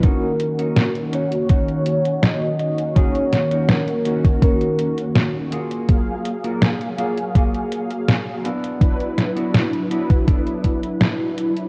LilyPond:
<<
  \new Staff \with { instrumentName = "Soft synth lead" } { \time 4/4 \key dis \minor \tempo 4 = 82 ais'4. cis''4. dis''8 dis''8 | cis''4 ais'4 ais'4. r8 | r1 | r1 | }
  \new Staff \with { instrumentName = "Clean electric guitar" } { \time 4/4 \key dis \minor <cis' dis' fis'>8 r16 <cis' dis' fis'>16 r8 <cis' dis' fis'>16 r16 <cis' dis' fis'>8. r4 r16 | <cis' dis' gis'>8 r16 <cis' dis' fis'>16 r8 <cis' dis' fis'>16 r16 <cis' dis' fis'>8. r8. <ais eis' fis' gis'>8~ | <ais eis' fis' gis'>8 r16 <ais eis' fis' ais'>16 r8 <ais eis' fis' gis'>16 r16 <ais eis' fis' gis'>8. r8. <b d' e' fis'>8~ | <b d' e' fis'>8 r16 <b d' e' fis'>16 r8 <b d' e' fis'>16 r16 <b d' e' a'>8. r4 r16 | }
  \new Staff \with { instrumentName = "Analog polysynth" } { \time 4/4 \key dis \minor <dis ais cis' fis'>4. <dis ais cis' fis'>2~ <dis ais cis' fis'>8 | <dis ais cis' fis'>4. <dis ais cis' fis'>2 r8 | <fis ais gis' eis''>4. <fis ais gis' eis''>2 r8 | <fis d' e' b'>4. <fis d' e' b'>2~ <fis d' e' b'>8 | }
  \new DrumStaff \with { instrumentName = "Drums" } \drummode { \time 4/4 <hh bd>8 hh16 hh16 <hh sn>16 hh16 hh16 hh16 <hh bd>16 hh16 hh16 hh16 <hh sn>8 hh16 hh16 | <hh bd>16 hh16 <hh sn>16 hh16 <hh sn>16 hh16 hh16 <hh bd>16 <hh bd>16 hh16 hh16 hh16 <hh sn>8 hh16 hh16 | <hh bd>8 hh16 hh16 <hh sn>16 hh16 hh16 hh16 <hh bd>16 hh16 hh16 hh16 <hh sn>8 hh16 hh16 | <hh bd>16 hh16 <hh sn>16 hh16 <hh sn>16 hh16 hh16 <hh bd>16 <hh bd>16 hh16 <hh bd>16 hh16 <hh sn>8 hh16 hh16 | }
>>